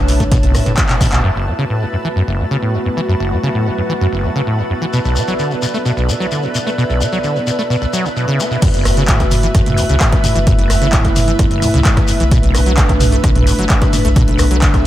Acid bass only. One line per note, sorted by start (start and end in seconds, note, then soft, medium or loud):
0.09 0.12 B2 medium
0.20 0.24 A3 loud
0.32 0.38 B2 loud
0.43 0.56 B1 loud
0.55 0.61 B2 loud
0.66 0.73 A2 medium
0.78 0.84 F#3 medium
0.90 0.96 B2 loud
1.01 1.07 B2 loud
1.13 1.22 B2 medium
1.24 1.30 F#2 loud
1.36 1.48 F#1 medium
1.47 1.53 G#2 loud
1.59 1.65 C#3 medium
1.70 1.83 A2 medium
1.82 1.85 F#2 medium
1.93 1.97 F#2 medium
2.05 2.08 E3 loud
2.16 2.23 F#2 medium
2.28 2.41 F#1 loud
2.39 2.46 G#2 loud
2.51 2.57 C#3 loud
2.62 2.76 A2 medium
2.74 2.78 F#2 medium
2.86 2.89 F#2 medium
2.97 3.01 E3 medium
3.09 3.15 F#2 loud
3.20 3.33 F#1 loud
3.32 3.38 G#2 loud
3.43 3.50 C#3 loud
3.55 3.68 A2 medium
3.66 3.70 F#2 medium
3.78 3.82 F#2 medium
3.89 3.93 E3 medium
4.01 4.07 F#2 loud
4.13 4.25 F#1 loud
4.24 4.30 G#2 loud
4.36 4.42 C#3 medium
4.47 4.60 A2 medium
4.59 4.62 F#2 medium
4.70 4.74 F#2 medium
4.82 4.86 E3 medium
4.93 5.00 B2 loud
5.05 5.18 B1 loud
5.16 5.23 C#3 loud
5.28 5.34 F#3 loud
5.39 5.53 D3 medium
5.51 5.55 B2 medium
5.62 5.66 B2 medium
5.74 5.78 A3 medium
5.85 5.92 B2 medium
5.97 6.10 B1 loud
6.09 6.15 C#3 loud
6.20 6.26 F#3 loud
6.32 6.45 D3 medium
6.43 6.47 B2 medium
6.55 6.59 B2 medium
6.66 6.70 A3 medium
6.78 6.84 B2 loud
6.90 7.02 B1 loud
7.01 7.07 C#3 loud
7.13 7.19 F#3 loud
7.24 7.37 D3 medium
7.36 7.39 B2 medium
7.47 7.51 B2 medium
7.59 7.62 A3 loud
7.70 7.76 B2 medium
7.82 7.86 B1 loud
7.93 8.06 F#3 loud
8.05 8.09 B2 medium
8.16 8.26 B2 medium
8.28 8.41 C#3 loud
8.39 8.46 B3 loud
8.51 8.57 B2 medium
8.62 8.69 F#2 loud
8.74 8.87 F#1 loud
8.85 8.92 G#2 loud
8.97 9.03 C#3 loud
9.09 9.22 A2 medium
9.20 9.24 F#2 medium
9.32 9.36 F#2 medium
9.43 9.47 E3 loud
9.55 9.61 F#2 loud
9.66 9.79 F#1 loud
9.78 9.84 G#2 loud
9.90 9.96 C#3 loud
10.01 10.14 A2 medium
10.13 10.16 F#2 medium
10.24 10.28 F#2 medium
10.36 10.39 E3 loud
10.47 10.53 F#2 loud
10.59 10.72 F#1 loud
10.70 10.76 G#2 loud
10.82 10.88 C#3 loud
10.93 11.06 A2 medium
11.05 11.09 F#2 medium
11.16 11.20 F#2 medium
11.28 11.32 E3 loud
11.39 11.46 F#2 loud
11.51 11.64 F#1 loud
11.62 11.69 G#2 loud
11.74 11.80 C#3 loud
11.85 11.99 A2 medium
11.97 12.01 F#2 medium
12.09 12.12 F#2 medium
12.20 12.24 E3 loud
12.32 12.38 B2 loud
12.43 12.56 B1 loud
12.55 12.61 C#3 loud
12.66 12.73 F#3 loud
12.78 12.91 D3 medium
12.89 12.93 B2 medium
13.01 13.05 B2 medium
13.12 13.16 A3 loud
13.24 13.30 B2 loud
13.36 13.48 B1 loud
13.47 13.53 C#3 loud
13.59 13.65 F#3 loud
13.70 13.83 D3 medium
13.82 13.86 B2 medium
13.93 13.97 B2 medium
14.05 14.09 A3 loud
14.16 14.23 B2 loud
14.28 14.41 B1 loud
14.39 14.46 C#3 loud
14.51 14.57 F#3 loud
14.62 14.76 D3 medium
14.74 14.78 B2 medium